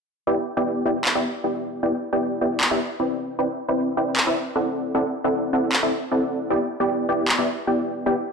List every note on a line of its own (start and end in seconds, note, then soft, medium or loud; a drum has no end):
0.27 0.36 B3 medium
0.27 0.36 E4 medium
0.27 0.36 G4 medium
0.27 0.36 D5 medium
0.27 0.36 G5 loud
0.57 0.83 B3 medium
0.57 0.83 E4 medium
0.57 0.83 G4 medium
0.57 0.83 D5 medium
0.57 0.83 G5 medium
0.86 1.13 B3 medium
0.86 1.13 E4 medium
0.86 1.13 G4 medium
0.86 1.13 D5 medium
0.86 1.13 G5 medium
1.05 clap medium
1.15 1.24 B3 medium
1.15 1.24 E4 medium
1.15 1.24 G4 medium
1.15 1.24 D5 medium
1.15 1.24 E5 medium
1.44 1.81 B3 medium
1.44 1.81 E4 medium
1.44 1.81 G4 medium
1.44 1.81 D5 medium
1.44 1.81 G5 medium
1.83 1.92 B3 medium
1.83 1.92 E4 medium
1.83 1.92 G4 medium
1.83 1.92 D5 medium
1.83 1.92 G5 loud
2.13 2.39 B3 medium
2.13 2.39 E4 medium
2.13 2.39 G4 medium
2.13 2.39 D5 medium
2.13 2.39 G5 loud
2.41 2.69 B3 medium
2.41 2.69 E4 medium
2.41 2.69 G4 medium
2.41 2.69 D5 medium
2.41 2.69 G5 medium
2.61 clap medium
2.71 2.79 B3 medium
2.71 2.79 E4 medium
2.71 2.79 G4 medium
2.71 2.79 D5 medium
2.71 2.79 E5 medium
3.00 3.37 C4 medium
3.00 3.37 E4 medium
3.00 3.37 B4 medium
3.00 3.37 D5 medium
3.00 3.37 G5 medium
3.39 3.48 C4 medium
3.39 3.48 E4 medium
3.39 3.48 B4 medium
3.39 3.48 D5 medium
3.39 3.48 G5 loud
3.68 3.95 C4 medium
3.68 3.95 E4 medium
3.68 3.95 B4 medium
3.68 3.95 D5 medium
3.68 3.95 G5 loud
3.97 4.24 C4 medium
3.97 4.24 E4 medium
3.97 4.24 B4 medium
3.97 4.24 D5 medium
3.97 4.24 G5 medium
4.17 clap medium
4.27 4.35 C4 medium
4.27 4.35 E4 medium
4.27 4.35 B4 medium
4.27 4.35 D5 medium
4.27 4.35 E5 loud
4.56 4.92 C4 medium
4.56 4.92 E4 medium
4.56 4.92 A4 medium
4.56 4.92 D5 medium
4.56 4.92 F#5 medium
4.95 5.04 C4 medium
4.95 5.04 E4 medium
4.95 5.04 A4 medium
4.95 5.04 D5 medium
4.95 5.04 F#5 loud
5.24 5.51 C4 medium
5.24 5.51 E4 medium
5.24 5.51 A4 medium
5.24 5.51 D5 medium
5.24 5.51 F#5 medium
5.53 5.80 C4 medium
5.53 5.80 E4 medium
5.53 5.80 A4 medium
5.53 5.80 D5 medium
5.53 5.80 F#5 medium
5.73 clap medium
5.83 5.91 C4 medium
5.83 5.91 E4 medium
5.83 5.91 A4 medium
5.83 5.91 D5 medium
5.83 5.91 E5 medium
6.12 6.48 C4 medium
6.12 6.48 E4 medium
6.12 6.48 A4 medium
6.12 6.48 D5 medium
6.12 6.48 F#5 medium
6.50 6.60 B3 medium
6.50 6.60 E4 medium
6.50 6.60 G4 medium
6.50 6.60 D5 medium
6.50 6.60 G5 loud
6.80 7.07 B3 medium
6.80 7.07 E4 medium
6.80 7.07 G4 medium
6.80 7.07 D5 medium
6.80 7.07 G5 medium
7.09 7.36 B3 medium
7.09 7.36 E4 medium
7.09 7.36 G4 medium
7.09 7.36 D5 medium
7.09 7.36 G5 medium
7.28 clap medium
7.39 7.47 B3 medium
7.39 7.47 E4 medium
7.39 7.47 G4 medium
7.39 7.47 D5 medium
7.39 7.47 E5 medium
7.67 8.04 B3 medium
7.67 8.04 E4 medium
7.67 8.04 G4 medium
7.67 8.04 D5 medium
7.67 8.04 G5 medium
8.06 8.16 B3 medium
8.06 8.16 E4 medium
8.06 8.15 G4 medium
8.06 8.15 D5 medium
8.06 8.16 G5 loud